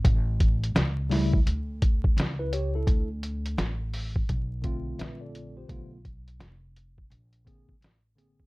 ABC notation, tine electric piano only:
X:1
M:4/4
L:1/16
Q:"Swing 16ths" 1/4=85
K:Am
V:1 name="Tine electric piano"
z12 z [EB] [G^c] [EA]- | [EA] z8 z3 [Be] [Ad]2 [Gc]- | [Gc] z12 z3 |]
V:2 name="Tine electric piano"
z6 [^C,G,A,E]2 z8 | z8 z2 [D,A,CF]6 | [D,A,B,F]2 z8 [D,_B,C_A]2 z2 [D,B,CA]2 |]